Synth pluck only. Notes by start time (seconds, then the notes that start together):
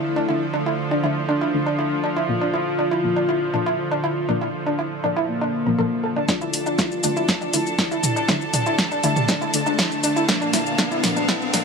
0.16 D4
0.29 E4
0.54 D4
0.66 E4
0.91 D4
1.04 E4
1.29 D4
1.41 E4
1.66 D4
1.79 E4
2.04 D4
2.16 E4
2.41 D4
2.54 E4
2.79 D4
2.91 E4
3.16 D4
3.29 E4
3.54 D4
3.66 E4
3.91 D4
4.04 E4
4.29 D4
4.41 E4
4.66 D4
4.79 E4
5.04 D4
5.16 E4
5.41 D4
5.66 A#4
5.79 A4
6.04 A4
6.16 D4
6.29 D4
6.41 E4
6.66 D4
6.79 E4
7.04 D4
7.17 E4
7.41 D4
7.54 E4
7.79 D4
7.91 E4
8.16 D4
8.29 E4
8.54 D4
8.66 E4
8.91 D4
9.04 E4
9.29 D4
9.41 E4
9.66 D4
9.79 E4
10.04 D4
10.16 E4
10.41 D4
10.53 E4
10.79 D4
10.91 E4
11.16 D4
11.29 E4
11.54 D4